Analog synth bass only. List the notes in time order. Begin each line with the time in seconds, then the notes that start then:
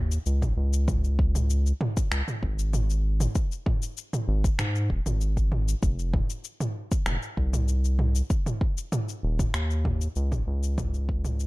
Already playing: D#2
0.26 C#2
0.42 A#1
0.57 C#2
2.11 C#2
2.43 G#1
4.28 G#1
4.59 G#2
4.90 D#1
5.06 G#1
5.83 F1
7.07 F1
7.37 C2
9.23 D#1
9.54 D#2
10.16 C#2
10.32 A#1
10.47 C#2